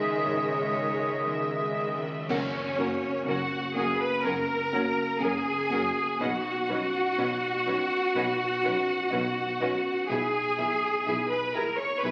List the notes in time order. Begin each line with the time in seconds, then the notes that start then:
Already playing: C#2 C#3 D#3 G#3 G#4 D#5 E5
0.23 G#2 C#5
0.60 G#3
0.94 G#4
1.25 D#3 E5
1.62 G#4
1.97 D#3
2.28 F#1 F#2 C#4 A#4 C#5 F#5, concert bass drum, crash
2.77 F#1 A#3 C#4 F#4 A#4 F#5
3.25 F#1 F#2 C#4 F#4 A#4 F#5
3.30 F#5
3.75 F#1 A#3 C#4 F#4 G#4 A#4 F#5 G#5
4.00 B4 B5
4.25 F#1 F#2 C#4 A#4 F#5 A#5
4.72 F#1 A#3 C#4 F#4 A#4 F#5
5.20 F#1 F#2 C#4 G#4 A#4 F#5 G#5
5.70 F#1 A#3 C#4 F#4 A#4 F#5
6.20 B1 B2 C#4 F#4 B4 D#5 F#5
6.68 B1 C#4 D#4 F#4 B4 D#5
7.17 B1 B2 C#4 B4 D#5
7.66 B1 C#4 D#4 F#4 B4 D#5
8.14 B1 B2 C#4 B4 D#5
8.64 B1 C#4 D#4 F#4 B4 D#5
9.10 B1 B2 C#4 B4 D#5
9.60 B1 C#4 D#4 F#4 B4 D#5
10.09 B1 B2 E4 G#4 E5 G#5
10.57 B1 B3 E4 G#4 E5
11.05 B1 B2 E4 G#4 E5
11.30 B4 B5
11.54 B1 B3 E4 G#4 A#4 E5 A#5
11.76 C#5 C#6
12.01 B1 B2 E4 G#4 B4 E5 B5